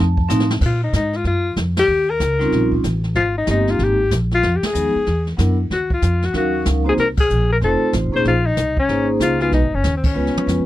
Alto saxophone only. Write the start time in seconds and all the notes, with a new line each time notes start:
0.65 F4
0.84 D#4
0.96 D#4
1.16 F4
1.27 F4
1.79 G4
2.10 A#4
3.16 F4
3.37 D#4
3.50 D#4
3.70 F4
3.84 G4
4.35 F4
4.56 G4
4.66 G#4
5.73 F#4
5.94 F4
6.25 F#4
6.37 F#4
6.89 G#4
7.00 A#4
7.20 G#4
7.52 A#4
7.64 A4
8.16 C5
8.27 F4
8.46 D#4
8.79 C#4
9.22 F4
9.42 F4
9.53 D#4
9.75 C#4
9.97 C4
10.06 C#4